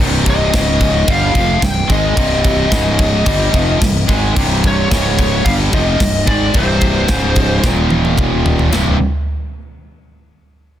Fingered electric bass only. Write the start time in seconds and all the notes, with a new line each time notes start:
0.00 C1
0.54 C#1
1.08 G1
1.35 F1
1.62 C1
1.89 G#1
2.17 C1
2.71 C#1
3.26 G1
3.54 F1
3.82 C1
4.09 G#1
4.36 C1
4.91 C#1
5.45 G1
5.73 F1
6.00 C1
6.27 G#1
6.55 C1
7.09 C#1
7.63 D#1
8.73 C1